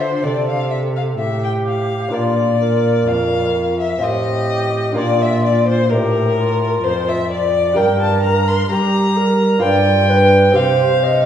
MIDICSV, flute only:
0, 0, Header, 1, 2, 480
1, 0, Start_track
1, 0, Tempo, 947867
1, 1080, Time_signature, 3, 2, 24, 8
1, 2517, Tempo, 933126
1, 5750, End_track
2, 0, Start_track
2, 0, Title_t, "Flute"
2, 0, Program_c, 0, 73
2, 0, Note_on_c, 0, 65, 60
2, 107, Note_off_c, 0, 65, 0
2, 117, Note_on_c, 0, 69, 57
2, 599, Note_on_c, 0, 67, 54
2, 607, Note_off_c, 0, 69, 0
2, 1074, Note_off_c, 0, 67, 0
2, 1077, Note_on_c, 0, 65, 62
2, 1312, Note_off_c, 0, 65, 0
2, 1316, Note_on_c, 0, 70, 56
2, 1886, Note_off_c, 0, 70, 0
2, 2038, Note_on_c, 0, 67, 61
2, 2517, Note_on_c, 0, 65, 53
2, 2525, Note_off_c, 0, 67, 0
2, 2995, Note_off_c, 0, 65, 0
2, 2998, Note_on_c, 0, 67, 58
2, 3236, Note_off_c, 0, 67, 0
2, 3239, Note_on_c, 0, 65, 67
2, 3812, Note_off_c, 0, 65, 0
2, 3955, Note_on_c, 0, 70, 79
2, 4424, Note_off_c, 0, 70, 0
2, 4436, Note_on_c, 0, 67, 71
2, 4674, Note_on_c, 0, 70, 63
2, 4682, Note_off_c, 0, 67, 0
2, 4912, Note_on_c, 0, 74, 75
2, 4920, Note_off_c, 0, 70, 0
2, 5151, Note_on_c, 0, 71, 65
2, 5159, Note_off_c, 0, 74, 0
2, 5393, Note_off_c, 0, 71, 0
2, 5396, Note_on_c, 0, 72, 71
2, 5635, Note_on_c, 0, 75, 70
2, 5643, Note_off_c, 0, 72, 0
2, 5750, Note_off_c, 0, 75, 0
2, 5750, End_track
0, 0, End_of_file